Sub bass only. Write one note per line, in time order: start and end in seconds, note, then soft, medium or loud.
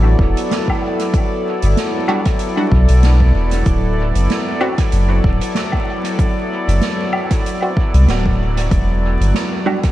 0.00 0.15 A1 medium
0.19 0.34 E1 loud
1.63 1.75 G1 loud
2.71 2.87 B1 loud
2.89 3.32 B1 medium
3.34 3.63 E1 medium
3.66 4.12 D1 medium
4.15 4.27 F#1 loud
4.92 5.21 F#1 medium
5.24 5.39 D1 loud
6.68 6.80 F#1 loud
7.94 8.06 C2 medium
8.08 8.69 D1 loud
8.71 9.17 E1 medium
9.20 9.33 G1 loud